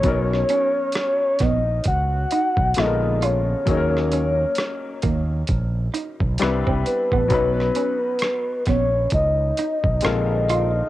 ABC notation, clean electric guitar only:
X:1
M:4/4
L:1/16
Q:"Swing 16ths" 1/4=66
K:B
V:1 name="Clean electric guitar"
z2 C z3 B, z3 D z3 ^E z | z2 C z3 A, z3 D z2 =C z B, | z2 C z3 B, z3 D z3 ^E z |]